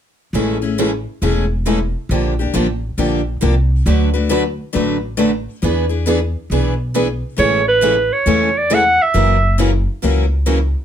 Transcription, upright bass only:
0.33 1.04 A1 medium
1.22 1.92 E1 medium
2.09 2.45 A#1 medium
2.53 2.91 A1 medium
2.97 3.35 A#1 medium
3.42 3.80 C2 medium
3.86 4.57 D2 medium
4.75 5.45 A1 medium
5.63 6.33 E2 medium
6.50 7.21 B1 medium
7.38 8.09 A1 medium
8.26 8.96 E2 medium
9.14 9.85 F#1 medium
10.03 10.73 C#2 medium

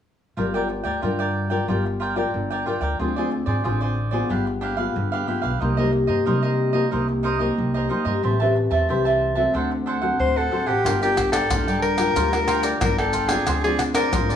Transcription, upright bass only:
0.37 0.79 G1 medium
0.84 0.99 D2 medium
1.03 1.59 G2 medium
1.68 2.24 G1 medium
2.34 2.62 G1 medium
2.81 2.96 D2 medium
2.99 3.41 D2 medium
3.47 3.62 G#2 medium
3.65 4.21 A1 medium
4.30 4.86 G1 medium
4.96 5.24 G1 medium
5.44 5.58 B1 medium
5.62 6.03 C2 medium
6.09 6.23 G2 medium
6.27 6.83 C3 medium
6.92 7.48 C2 medium
7.58 7.86 C2 medium
8.05 8.20 G2 medium
8.24 8.65 A1 medium
8.71 8.86 E2 medium
8.89 9.45 C2 medium
9.54 10.10 D2 medium
10.19 10.47 D2 medium
10.67 10.82 A1 medium
10.85 11.41 G1 medium
11.50 11.68 D2 medium
11.68 12.09 G2 medium
12.16 12.72 D2 medium
12.82 13.37 G1 medium
13.47 14.03 D2 medium
14.13 14.31 G#2 medium
14.30 14.36 A1 medium

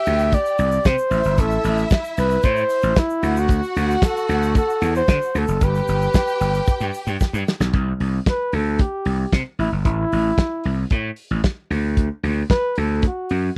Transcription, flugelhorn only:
0.00 0.36 E5 loud
0.34 0.88 D5 loud
0.87 1.42 C5 loud
1.40 1.91 A4 medium
2.18 2.46 B4 loud
2.45 3.00 C5 loud
2.99 3.41 E4 loud
3.39 4.06 F#4 medium
4.04 4.56 A4 loud
4.57 4.93 A4 loud
4.97 5.40 C5 loud
5.38 5.65 A4 loud
5.63 7.21 B4 loud
8.30 8.56 B4 loud
8.55 8.83 A4 loud
8.81 9.33 G4 medium
9.60 9.71 E4 loud
9.86 10.88 E4 loud
12.51 12.80 B4 loud
12.78 13.04 A4 loud
13.07 13.55 F#4 medium

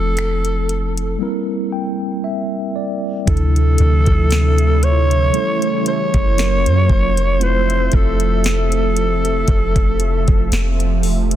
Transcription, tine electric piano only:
0.00 1.15 F3 medium
0.00 1.16 A3 medium
0.00 1.16 C4 medium
0.00 1.17 E4 medium
0.00 1.17 A4 medium
1.19 3.22 G3 medium
1.19 3.23 A#3 medium
1.19 3.23 C4 medium
1.19 3.24 E4 medium
1.23 3.24 A#4 medium
1.72 2.20 G5 medium
2.24 2.72 E5 medium
2.76 3.24 D5 medium
3.25 5.30 C3 medium
3.25 5.29 F3 medium
3.25 5.30 D4 medium
3.25 5.31 E4 medium
3.29 5.31 A4 medium
5.33 6.37 G3 medium
5.33 6.37 A3 medium
5.33 6.37 C#4 medium
5.33 6.38 E4 medium
5.33 6.38 A4 medium
6.37 7.41 F#3 medium
6.37 7.41 A#3 medium
6.37 7.41 C#4 medium
6.37 7.41 F4 medium
6.37 7.42 A#4 medium
7.39 11.36 A3 medium
7.39 11.36 C4 medium
7.39 11.36 E4 medium
7.39 11.36 F4 medium
7.43 7.49 B4 medium
7.50 11.36 C5 medium

